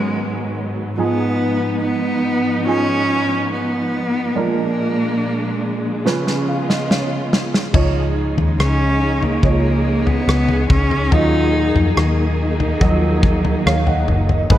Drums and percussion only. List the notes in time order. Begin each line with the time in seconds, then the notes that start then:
6.06 snare
6.27 snare
6.70 snare
6.91 snare
7.33 snare
7.54 snare
7.74 kick, floor tom, crash
8.38 floor tom
8.60 cross-stick
9.22 floor tom
9.43 kick
10.07 floor tom
10.29 cross-stick
10.48 floor tom
10.70 kick, floor tom
10.91 floor tom
11.12 floor tom
11.76 floor tom
11.97 cross-stick
12.60 floor tom
12.81 kick
13.23 kick
13.45 floor tom
13.67 cross-stick
13.87 floor tom
14.08 floor tom
14.29 floor tom
14.50 kick, floor tom